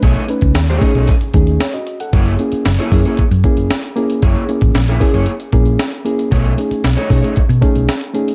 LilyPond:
<<
  \new Staff \with { instrumentName = "Clean electric guitar" } { \time 4/4 \key fis \mixolydian \tempo 4 = 115 <a dis' gis' cis''>8 r8. <a dis' gis' cis''>8 <a dis' gis' cis''>16 r2 | <ais e' gis' cis''>8 r8. <ais e' gis' cis''>8 <ais e' gis' cis''>16 r2 | <ais e' gis' cis''>8 r8. <ais e' gis' cis''>8 <ais e' gis' cis''>16 r2 | <a dis' gis' cis''>8 r8. <a dis' gis' cis''>8 <a dis' gis' cis''>16 r2 | }
  \new Staff \with { instrumentName = "Reed electric piano" } { \time 4/4 \key fis \mixolydian r8 <a cis' dis' b'>8 r8 <a cis' dis' gis'>8 r8 <a cis' dis' gis'>8 cis''16 <fis' dis''>8 <a' fis''>16~ | <a' fis''>16 r16 <ais cis' e' gis'>8 r8 <ais cis' e' gis'>8 r8 <ais cis' e' gis'>8 r8 <ais cis' e' gis'>8 | r8 <ais cis' e' gis'>8 r8 <ais cis' e' gis'>8 r8 <ais cis' e' gis'>8 r8 <ais cis' e' gis'>8 | r8 <a cis' dis' gis'>8 r8 <a cis' dis' gis'>8 r8 <a cis' dis' gis'>8 r8 <a cis' dis' gis'>8 | }
  \new Staff \with { instrumentName = "Fingered electric bass" } { \clef bass \time 4/4 \key fis \mixolydian b,,16 r8 cis,16 dis,8 r16 b,,16 r8 dis,8 r4 | fis,,8 r8 fis,,16 r16 fis,16 r8 fis,16 r16 fis,,16 r4 | fis,,16 r8 a,,16 ais,,8 r16 fis,,16 r8 ais,,8 r4 | b,,8 r8 b,,16 r16 b,16 r8 b,16 r16 b,,16 r4 | }
  \new DrumStaff \with { instrumentName = "Drums" } \drummode { \time 4/4 <hh bd>16 hh16 hh16 <hh bd>16 <hh sn>16 hh16 <hho bd>16 hh16 <hh bd sn>16 hh16 <hh bd>16 hh16 <hh sn>16 hh16 hh16 hh16 | <hh bd>16 hh16 hh16 hh16 <hh sn>16 hh16 <hho bd>16 hh16 <hh bd>16 hh16 <hh bd>16 hh16 <hh sn>16 hh16 hh16 hh16 | <hh bd>16 hh16 hh16 <hh bd>16 <hh sn>16 hh16 <hho bd>16 hh16 hh16 hh16 <hh bd>16 hh16 <hh sn>16 hh16 hh16 hh16 | <hh bd>16 hh16 hh16 hh16 <hh sn>16 hh16 <hho bd>16 hh16 <hh bd>16 hh16 <hh bd>16 hh16 <hh sn>16 hh16 hh16 hh16 | }
>>